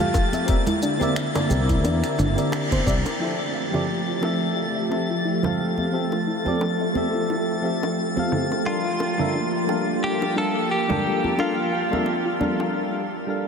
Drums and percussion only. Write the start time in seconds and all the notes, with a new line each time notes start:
0.00 shaker
0.14 kick, high bongo, shaker
0.33 closed hi-hat, high conga, shaker
0.48 kick, closed hi-hat, shaker
0.67 closed hi-hat, high bongo, low conga
0.82 shaker
1.01 high conga, shaker
1.16 finger snap, closed hi-hat, shaker
1.35 closed hi-hat, high bongo, low conga, shaker
1.50 high conga, shaker
1.69 kick, closed hi-hat, shaker
1.84 closed hi-hat, high bongo, shaker
2.04 finger snap, closed hi-hat, shaker
2.19 low conga, shaker
2.38 closed hi-hat, shaker
2.52 finger snap, closed hi-hat, high bongo, shaker
2.72 kick, closed hi-hat, high conga, low conga, shaker
2.87 kick, shaker
3.06 closed hi-hat, high bongo, shaker
3.74 high bongo, low conga
4.23 high bongo
4.91 high bongo
5.43 high bongo, low conga
5.78 high conga
6.12 high bongo
6.46 high conga
6.61 high bongo
6.95 high conga
7.30 high bongo
7.83 high bongo
8.17 high conga
8.32 low conga
8.52 high bongo
9.00 high bongo
9.19 low conga
9.69 high bongo
10.22 high bongo
10.89 high bongo, low conga
11.24 high conga
11.39 high bongo
11.93 high conga
12.06 high bongo
12.41 high conga
12.60 high bongo